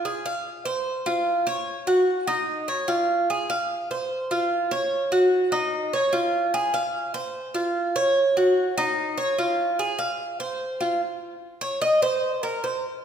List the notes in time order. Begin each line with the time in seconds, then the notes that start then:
0.05 G#4
0.26 F5
0.65 C5
1.06 F4
1.47 C#5
1.87 F#4
2.27 D#4
2.68 C#5
2.88 F4
3.30 G#4
3.50 F5
3.91 C5
4.31 F4
4.71 C#5
5.12 F#4
5.52 D#4
5.93 C#5
6.13 F4
6.54 G#4
6.74 F5
7.14 C5
7.55 F4
7.96 C#5
8.37 F#4
8.78 D#4
9.18 C#5
9.39 F4
9.79 G#4
9.99 F5
10.40 C5
10.81 F4
11.61 C#5
11.82 D#5
12.02 C5
12.43 A#4
12.64 C5